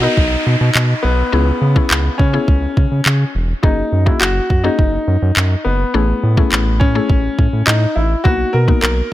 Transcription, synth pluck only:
0.03 B3 D#4 F#4 A#4
1.32 B3 C#4 E4 G#4
1.76 B3 C#4 E4 G#4
2.33 B3 C#4 E4 G#4
3.63 A#3 C#4 F#4 G#4
4.06 A#3 C#4 F#4 G#4
4.64 A#3 C#4 F#4 G#4
5.94 A3 C#4 E4 G#4
6.37 A3 C#4 E4 G#4
6.95 A3 C#4 E4 G#4
8.25 A#3 B3 D#4 F#4
8.68 A#3 B3 D#4 F#4

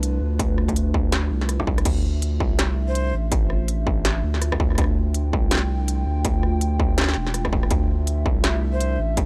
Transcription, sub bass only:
Already playing: C2
0.21 D2
1.31 C2
1.86 D2
2.41 C2
3.14 A1
4.24 D2
4.78 D2
5.33 C2
6.06 D2
7.17 E1
7.71 D2
8.26 C2
8.99 A1

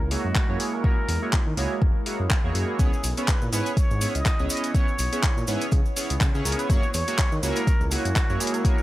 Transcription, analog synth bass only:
0.00 C#2
0.25 F#2
0.49 F#2
1.09 E2
1.47 D#3
1.57 C#2
1.82 F#1
2.20 F#2
2.44 E2
2.55 F#2
2.79 C#2
3.04 B1
3.42 A#2
3.52 G#2
3.91 G#2
4.15 C#2
4.39 C#2
4.99 B1
5.37 A#2
5.48 G#2
5.72 C#3
6.10 C#2
6.21 C#3
6.35 C#3
6.45 C#2
6.70 F#2
6.94 E2
7.32 D#3
7.43 C#2
7.81 C#2
8.05 F#2
8.30 F#2

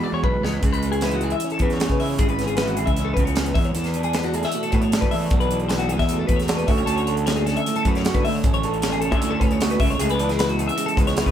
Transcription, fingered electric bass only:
0.12 E2
0.24 B1
0.41 C#2
0.63 C#2
1.60 E2
1.90 C#3
2.19 G#1
2.87 C#2
3.17 C#2
3.56 E2
3.75 E2
4.73 A2
5.02 E3
5.31 B1
5.99 E2
6.29 E2
6.68 D2
6.87 D2
7.85 F#2
8.15 D3
8.44 A1
9.12 D2
9.41 D2
9.80 C#2
9.99 C#2
10.97 C#2
11.26 C#3

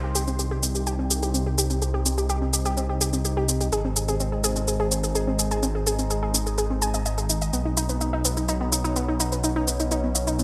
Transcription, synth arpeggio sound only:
0.04 G4
0.15 G4
0.27 C4
0.39 G4
0.51 G4
0.63 C4
0.75 G4
0.87 G4
0.99 C4
1.11 G4
1.23 G4
1.34 C4
1.46 G4
1.58 G4
1.70 C4
1.82 G4
1.94 G4
2.06 C4
2.18 G4
2.30 G4
2.42 C4
2.53 G4
2.66 G4
2.77 C4
2.89 G4
3.01 G4
3.13 C4
3.25 G4
3.37 G4
3.49 C4
3.61 G4
3.72 G#4
3.85 C4
3.96 G#4
4.08 G#4
4.20 C4
4.32 G#4
4.44 G#4
4.56 C4
4.68 G#4
4.80 G#4
4.91 C4
5.04 G#4
5.15 G#4
5.27 C4
5.39 G#4
5.51 G#4
5.63 C4
5.75 G#4
5.87 G#4
5.99 C4
6.10 G#4
6.23 G#4
6.34 C4
6.47 G#4
6.58 G#4
6.70 C4
6.82 G#5
6.94 D#5
7.06 D#5
7.18 G#4
7.29 D#4
7.42 D#5
7.53 B3
7.65 D#4
7.77 D#4
7.89 B3
8.01 D#4
8.13 D#4
8.25 B3
8.37 D#4
8.49 D#4
8.61 B3
8.72 D#4
8.84 D#4
8.96 B3
9.08 D#4
9.20 D#4
9.32 B3
9.44 D#4
9.56 D#4
9.68 B3
9.80 D#4
9.91 D#4
10.04 B3
10.15 D#4
10.27 D#4
10.39 B3

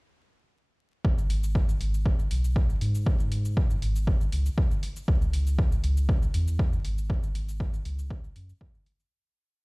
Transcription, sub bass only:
1.05 G#1
1.80 G#1
2.31 B1
2.81 G#2
3.82 G#1
4.33 C#2
5.08 C#2
5.84 C#2
6.34 E2
6.85 G#1
7.85 C#2
8.36 F#2

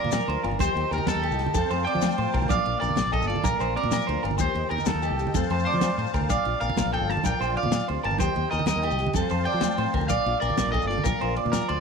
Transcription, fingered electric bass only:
0.04 A#2
0.28 D2
0.44 G1
0.60 D#2
0.75 D#2
0.91 D#2
1.06 D#2
1.15 D#2
1.31 C2
1.55 F2
1.70 F2
1.95 F3
2.18 A2
2.34 B1
2.50 A#1
2.67 A#1
2.82 A#1
2.98 A#1
3.06 A#1
3.22 G1
3.45 A#1
3.60 A#1
3.85 A#2
4.08 D2
4.24 G1
4.40 D#2
4.55 D#2
4.71 D#2
4.86 D#2
4.94 D#2
5.10 C2
5.35 F2
5.51 F2
5.74 F3
5.98 A2
6.14 D2
6.30 A#1
6.46 A#1
6.61 A#1
6.78 A#1
6.86 A#1
7.01 G1
7.26 A#1
7.41 A#1
7.66 A#2
7.90 D2
8.05 G1
8.20 D#2
8.36 D#2
8.53 D#2
8.68 D#2
8.76 D#2
8.92 C2
9.15 F2
9.31 F2
9.54 F3
9.78 A2
9.94 D2
10.10 A#1
10.26 A#1
10.42 A#1
10.58 A#1
10.67 A#1
10.83 G1
11.06 A#1
11.22 A#1
11.45 A#2
11.70 D2

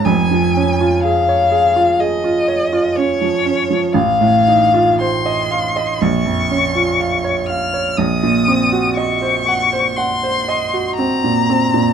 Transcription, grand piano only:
0.05 F1 F2
0.31 F3
0.56 C#4
0.81 F4
1.05 G#4
1.29 C#5
1.52 G#4
1.76 F4
2.00 G#4
2.24 F4
2.48 C#5
2.73 F4
2.97 C#4
3.21 F3
3.45 C#4
3.70 F3
3.94 A1
4.21 A2
4.48 D#4
4.74 F4
5.01 C5
5.26 D#5
5.51 F5
5.76 D#5
6.02 A#1
6.26 F2
6.51 C#4
6.75 F4
7.00 F5
7.24 C#5
7.50 F5
7.74 C#5
7.98 A#1
8.23 A#2
8.48 C4
8.72 F#4
8.97 D#5
9.22 C5
9.48 F#5
9.73 C5
9.98 F#5
10.23 C5
10.48 D#5
10.73 F#4
10.99 C4
11.24 A#2
11.50 C4
11.74 A#2

